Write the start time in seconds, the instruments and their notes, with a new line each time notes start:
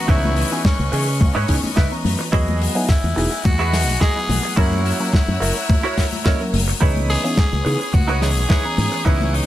Already playing: string section B4 D#5 C#6
0.08 fingered electric bass C#2, reed electric piano E3 B3 C#4 G#4, clean electric guitar D#4 E4 B4 C#5, tenor saxophone E4, kick, maracas
0.23 high conga, maracas
0.36 open hi-hat
0.51 reed electric piano E3 B3 C#4 D#4 G#4, high bongo, maracas
0.65 tenor saxophone C#4, kick, snare, maracas
0.79 fingered electric bass C#2, high conga, maracas
0.92 fingered electric bass C#3, reed electric piano E3 B3 C#4 D#4 G#4, muted clean electric guitar stroke, open hi-hat
1.07 muted clean electric guitar stroke, maracas
1.20 fingered electric bass C#2, muted clean electric guitar stroke, kick, high conga, maracas
1.35 fingered electric bass G#2, clean electric guitar D#4 E4 B4 C#5, maracas
1.48 fingered electric bass C#2, reed electric piano E3 B3 C#4 D#4 G#4, kick, open hi-hat
1.63 muted fingered electric bass stroke, high conga, maracas
1.76 fingered electric bass C#2, clean electric guitar D#4 E4 B4 E5, kick, snare, maracas
1.91 reed electric piano E3 B3 C#4 A#5, maracas
2.04 fingered electric bass F#2, muted clean electric guitar stroke, open hi-hat, high conga
2.19 muted clean electric guitar stroke, high bongo, maracas
2.32 fingered electric bass E2, reed electric piano F#3 B3 E4 G#4 D#5, clean electric guitar E4 F#4 G#4 D#5, string section F#5 G#5, kick, maracas
2.48 high conga, maracas
2.62 open hi-hat
2.75 reed electric piano F#3 B3 D#4 E4 G#4, high bongo, maracas
2.89 tenor saxophone E4, kick, snare, maracas
3.04 fingered electric bass E2, high conga, maracas
3.16 fingered electric bass E1, reed electric piano F#3 B3 D#4 E4 G#4, muted clean electric guitar stroke, open hi-hat
3.31 muted clean electric guitar stroke, maracas
3.44 fingered electric bass E2, tenor saxophone F#4, muted clean electric guitar stroke, kick, high conga, maracas
3.59 clean electric guitar E4 F#4 G#4 B4, maracas
3.73 reed electric piano F#3 B3 D#4 E4 G#4, snare, open hi-hat
3.88 fingered electric bass B1, high conga, maracas
4.00 clean electric guitar E4 F#4 G#4 D#5, tenor saxophone G#4, kick, snare, maracas
4.15 reed electric piano F#3 B3 E4 B4 D#5, maracas
4.28 fingered electric bass B1, muted clean electric guitar stroke, open hi-hat, high bongo, high conga, low conga
4.43 muted clean electric guitar stroke, maracas
4.56 fingered electric bass F#2, reed electric piano F#3 A#3 C#4 E4 A#4, clean electric guitar E4 F#4 A#4 C#5, tenor saxophone E4, string section C#5 A#5 E6, kick, maracas
4.72 high conga, maracas
4.86 open hi-hat
5.00 reed electric piano F#3 A#3 C#4 E4 A#4, high bongo, maracas
5.13 kick, snare, maracas
5.28 fingered electric bass F#2, high conga, maracas
5.40 fingered electric bass F#1, reed electric piano F#3 A#3 C#4 E4 A#4, muted clean electric guitar stroke, open hi-hat
5.55 muted clean electric guitar stroke, maracas
5.69 muted clean electric guitar stroke, kick, high conga, maracas
5.83 clean electric guitar E4 F#4 A#4 C#5, maracas
5.98 kick, snare, open hi-hat
6.12 high conga, maracas
6.25 reed electric piano F#3 A#3 C#4 E4 D#5, clean electric guitar E4 F#4 A#4 C#5, kick, snare, maracas
6.40 reed electric piano F#3 A#3 C#4 E4 A#4, maracas
6.53 fingered electric bass F#1, muted clean electric guitar stroke, open hi-hat, high conga
6.68 muted clean electric guitar stroke, high bongo, maracas
6.80 fingered electric bass C#2, reed electric piano E3 B3 C#4 G#4 D#5, clean electric guitar D#4 E4 B4 C#5, string section B4 C#5 D#6, kick, maracas
6.96 high conga, maracas
7.10 tenor saxophone G#4, open hi-hat
7.24 reed electric piano E3 B3 C#4 D#4 G#4, high bongo, maracas
7.37 kick, snare, maracas
7.53 fingered electric bass C#2, high conga, maracas
7.65 fingered electric bass C#3, reed electric piano E3 B3 C#4 D#4 G#4, muted clean electric guitar stroke, open hi-hat
7.80 muted clean electric guitar stroke, maracas
7.93 fingered electric bass C#2, tenor saxophone F#4, muted clean electric guitar stroke, kick, high conga, maracas
8.08 clean electric guitar D#4 E4 B4 C#5, maracas
8.21 reed electric piano E3 B3 C#4 D#4 G#4, tenor saxophone G#4, snare, open hi-hat
8.37 fingered electric bass B1, high conga, maracas
8.49 clean electric guitar D#4 E4 B4 C#5, kick, snare, maracas
8.64 reed electric piano E3 B3 C#4 D#5 A#5, maracas
8.77 fingered electric bass G#2, muted clean electric guitar stroke, open hi-hat, high bongo, high conga, low conga
8.92 muted clean electric guitar stroke, maracas
9.05 fingered electric bass C#2, reed electric piano E3 B3 C#4 G#4 D#5, clean electric guitar D#4 E4 B4 C#5, tenor saxophone E4, string section C#6, kick, maracas
9.21 high conga, maracas
9.34 tenor saxophone D#4, open hi-hat